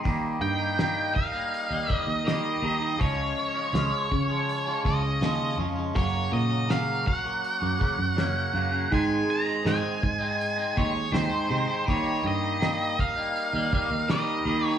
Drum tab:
HH |o-o-o-o-|o-o-o-o-|o-o-o-o-|o-o-o-o-|
SD |--o---o-|--o---o-|--o---o-|--o---o-|
BD |o--o-o--|o--o-o--|o--o-o--|o--o-o--|

HH |o-o-o-o-|
SD |--o---o-|
BD |o--o-o--|